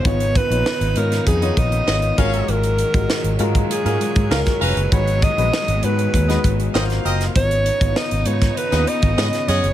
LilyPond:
<<
  \new Staff \with { instrumentName = "Alto saxophone" } { \time 4/4 \key cis \mixolydian \tempo 4 = 99 cis''8 b'4 ais'8 gis'8 dis''4 cis''8 | ais'4. r8 gis'4 ais'8 b'8 | cis''8 dis''4 b'4. r4 | cis''4 dis''8 cis''8 b'8 dis''4 cis''8 | }
  \new Staff \with { instrumentName = "Horn section" } { \time 4/4 \key cis \mixolydian r2 r16 <b gis' dis''>16 r8 <b gis' dis''>16 r16 <cis' ais' eis''>8~ | <cis' ais' eis''>16 r2 <cis' ais' eis''>16 r8 <cis' ais' eis''>16 r16 <cis' eis'' ais''>8 | r2 r16 <b gis' dis''>16 r8 <bis ais' dis''>16 r16 <bis ais' dis''>8 | r2 r16 <b gis' dis''>16 r8 <b gis' dis''>16 r16 <b gis' dis''>8 | }
  \new Staff \with { instrumentName = "Grand piano" } { \time 4/4 \key cis \mixolydian <b dis' eis' cis''>8 r16 <b dis' eis' cis''>8 r16 <b dis' eis' cis''>8 r16 <b dis' eis' cis''>8 r16 <b dis' eis' cis''>8 <gis eis' fis' ais'>8~ | <gis eis' fis' ais'>8 r16 <gis eis' fis' ais'>8 r16 <gis eis' fis' ais'>8 r16 <gis eis' fis' ais'>8 r16 <gis eis' fis' ais'>8. r16 | <gis dis' fis' b'>8 r16 <gis dis' fis' b'>8 r16 <gis dis' fis' b'>8 r16 <gis dis' fis' b'>8 r16 <ais eis' fis' bis'>8. r16 | <b dis' eis' cis''>8 r16 <b dis' eis' cis''>8 r16 <b dis' eis' cis''>8 r16 <b dis' eis' b'>8 r16 <b dis' eis' cis''>8. r16 | }
  \new Staff \with { instrumentName = "String section" } { \clef bass \time 4/4 \key cis \mixolydian << { dis'2.~ dis'8 fis8~ | fis1~ | fis2. eis''4 | dis'1 | } \\ { <cis dis b>2.~ <cis dis b>8 <ais, gis>8~ | <ais, gis>1 | <dis gis b>2. <bis, fis ais>4 | <cis dis b>1 | } >> }
  \new Staff \with { instrumentName = "Fingered electric bass" } { \clef bass \time 4/4 \key cis \mixolydian gis,,8. ais,,16 r16 gis,,16 gis,8 eis,8 ais,,8 gis,,8 gis,,8 | gis,,8. gis,,16 r16 gis,,16 gis,8 r16 gis,16 r16 gis,16 cis,16 r16 eis,,16 fis,,16 | gis,,8. ais,,16 r16 gis,,16 gis,8 dis,8 gis,,8 gis,,8 fis,,8 | gis,,8. gis,,16 r16 gis,,16 gis,8 r16 dis,16 r16 gis,,16 gis,16 r16 fis,16 fis,,16 | }
  \new DrumStaff \with { instrumentName = "Drums" } \drummode { \time 4/4 <hh bd>16 hh16 <hh bd>16 hh16 sn16 hh16 hh16 <hh sn>16 <hh bd>16 hh16 <hh bd>16 hh16 sn16 hh16 <hh bd>16 hh16 | hh16 hh16 hh16 <hh bd>16 sn16 hh16 hh16 <hh bd>16 hh16 hh16 hh16 <hh bd>16 sn16 <hh bd sn>16 hho16 hh16 | <hh bd>16 hh16 <hh bd>16 hh16 sn16 hh16 hh16 hh16 <hh bd>16 <hh sn>16 <hh bd>16 hh16 sn16 <hh sn>16 hh16 <hh sn>16 | <hh bd>16 hh16 hh16 <hh bd>16 sn16 hh16 hh16 <hh bd sn>16 hh16 <hh sn>16 hh16 <hh bd>16 sn16 <hh sn>16 hh16 hh16 | }
>>